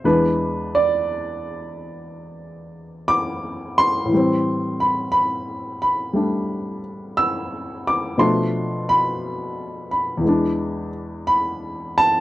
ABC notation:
X:1
M:4/4
L:1/8
Q:"Swing" 1/4=59
K:Am
V:1 name="Grand piano"
B d4- d d' c'- | c' b b b2 z e' d' | c' b2 b2 z b a |]
V:2 name="Grand piano" clef=bass
[E,,E,^G,D]8 | [A,,E,G,C]4 [G,A,D]4 | [B,,F,A,D]4 [E,,E,^G,D]4 |]